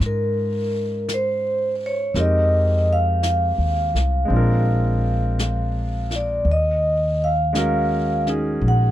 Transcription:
0.00 2.11 G#2 medium
0.00 2.13 G#3 soft
0.00 2.14 C#4 soft
0.00 2.14 D#4 soft
0.00 2.16 F4 soft
0.00 2.18 D#5 soft
0.00 brush sweep soft
0.00 snare soft
0.06 1.14 A#4 medium
1.09 brush sweep soft
1.09 snare soft
1.09 hi-hat pedal soft
1.14 1.75 C5 medium
1.76 1.83 C5 soft
1.86 2.19 C#5 medium
2.14 3.55 F2 medium
2.14 4.24 G#3 soft
2.14 4.26 C4 soft
2.14 4.31 D#4 soft
2.14 4.31 G4 soft
2.14 4.31 A#4 soft
2.14 brush sweep soft
2.14 snare soft
2.19 2.92 D#5 medium
2.93 6.24 F5 medium
3.23 brush sweep soft
3.23 snare soft
3.23 hi-hat pedal medium
3.58 3.92 D#2 soft
3.94 4.28 C2 medium
3.94 snare soft
4.25 6.44 G#3 soft
4.25 6.45 C4 soft
4.30 6.42 A#1 medium
4.30 6.47 D4 soft
4.30 6.48 F4 soft
4.30 brush sweep soft
4.36 6.49 A#4 soft
5.39 brush sweep soft
5.39 snare soft
5.39 hi-hat pedal soft
6.11 snare soft
6.15 6.50 D5 medium
6.45 8.58 D#2 medium
6.45 brush sweep soft
6.52 7.24 D#5 medium
7.24 8.26 F5 medium
7.53 8.91 G#3 medium
7.53 8.25 C#4 soft
7.53 brush sweep soft
7.53 snare soft
7.53 hi-hat pedal soft
7.57 8.91 F#4 soft
7.57 8.91 A#4 medium
8.27 8.91 C#4 soft
8.27 8.91 D#4 soft
8.27 8.91 G#4 soft
8.27 snare soft
8.61 8.91 A#1 medium
8.61 brush sweep soft
8.68 8.91 F#5 medium

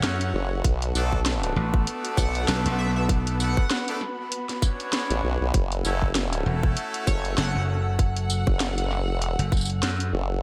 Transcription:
0.00 0.32 F#2 loud
0.00 0.63 C#4 medium
0.00 0.63 E4 medium
0.00 0.63 F#4 medium
0.00 10.42 F#4 medium
0.00 0.61 A4 medium
0.00 0.63 C#5 medium
0.00 0.61 F#5 medium
0.00 1.77 F#5 medium
0.00 0.61 E6 loud
0.00 snare loud
0.00 closed hi-hat medium
0.21 closed hi-hat medium
0.34 0.62 F#1 loud
0.64 0.93 B1 loud
0.64 6.67 B3 medium
0.64 5.50 B4 medium
0.64 3.07 A5 medium
0.64 kick loud
0.64 closed hi-hat medium
0.82 closed hi-hat medium
0.95 1.54 B1 loud
0.95 1.20 A3 loud
0.95 1.20 B3 loud
0.95 1.20 D4 medium
0.95 1.20 F#4 medium
0.95 1.20 A4 loud
0.95 tambourine medium
1.12 kick medium
1.26 snare loud
1.26 closed hi-hat medium
1.43 3.37 A3 loud
1.43 3.37 B3 loud
1.43 3.37 D4 medium
1.43 3.37 F#4 medium
1.43 3.37 A4 loud
1.43 closed hi-hat medium
1.56 1.85 A1 loud
1.74 kick loud
1.87 closed hi-hat medium
2.05 closed hi-hat medium
2.17 2.46 B1 loud
2.17 2.45 F#5 loud
2.17 kick loud
2.17 tambourine medium
2.35 closed hi-hat soft
2.48 2.63 B1 loud
2.48 snare loud
2.48 closed hi-hat medium
2.66 3.55 B1 loud
2.66 closed hi-hat medium
2.78 2.90 E5 medium
2.96 3.05 E5 medium
3.09 5.52 B5 medium
3.09 kick loud
3.09 closed hi-hat medium
3.27 closed hi-hat medium
3.40 3.65 A3 medium
3.40 3.65 B3 medium
3.40 3.65 D4 medium
3.40 3.65 F#4 medium
3.40 3.65 A4 loud
3.40 3.88 F#5 loud
3.40 tambourine medium
3.57 kick loud
3.71 snare loud
3.71 closed hi-hat medium
3.88 4.01 A3 loud
3.88 4.01 B3 loud
3.88 4.01 D4 medium
3.88 4.01 F#4 medium
3.88 4.01 A4 loud
3.88 closed hi-hat medium
4.01 snare soft
4.32 closed hi-hat medium
4.49 snare soft
4.49 closed hi-hat medium
4.62 5.53 B3 medium
4.62 5.53 C#4 medium
4.62 5.53 D4 medium
4.62 5.53 F#4 medium
4.62 5.53 C#5 loud
4.62 kick loud
4.62 tambourine medium
4.80 closed hi-hat soft
4.93 snare loud
4.93 closed hi-hat medium
5.10 5.21 A1 loud
5.10 closed hi-hat medium
5.24 5.38 B1 loud
5.41 5.52 B1 loud
5.54 5.83 F#1 loud
5.54 10.40 A4 medium
5.54 10.40 F#5 medium
5.54 10.40 E6 loud
5.54 kick loud
5.54 closed hi-hat medium
5.72 closed hi-hat soft
5.85 6.44 F#1 medium
5.85 6.10 A3 loud
5.85 6.10 C#4 loud
5.85 6.10 E4 medium
5.85 6.10 F#4 medium
5.85 6.10 A4 loud
5.85 tambourine medium
6.02 kick medium
6.15 snare loud
6.15 closed hi-hat medium
6.33 8.26 A3 loud
6.33 8.26 C#4 loud
6.33 8.26 E4 medium
6.33 8.27 F#4 medium
6.33 8.26 A4 loud
6.33 closed hi-hat medium
6.46 6.75 E1 loud
6.63 kick loud
6.77 closed hi-hat medium
6.94 closed hi-hat medium
7.07 7.36 F#1 loud
7.07 7.35 C#5 loud
7.07 kick loud
7.07 tambourine medium
7.25 closed hi-hat soft
7.38 7.53 F#1 loud
7.38 7.63 F#5 medium
7.38 snare loud
7.38 closed hi-hat medium
7.55 8.44 F#1 loud
7.65 10.42 F#5 medium
7.99 kick loud
7.99 closed hi-hat medium
8.17 closed hi-hat medium
8.30 tambourine medium
8.47 9.10 F#1 loud
8.47 kick loud
8.60 snare loud
8.60 closed hi-hat medium
8.78 closed hi-hat medium
8.91 snare soft
9.10 9.36 F1 loud
9.22 closed hi-hat medium
9.39 9.81 F#1 loud
9.39 closed hi-hat soft
9.52 kick loud
9.52 tambourine soft
9.57 tambourine soft
9.61 tambourine soft
9.65 tambourine medium
9.70 closed hi-hat soft
9.82 10.11 F#2 loud
9.82 snare loud
9.82 closed hi-hat medium
10.00 closed hi-hat medium
10.13 10.42 F#1 loud

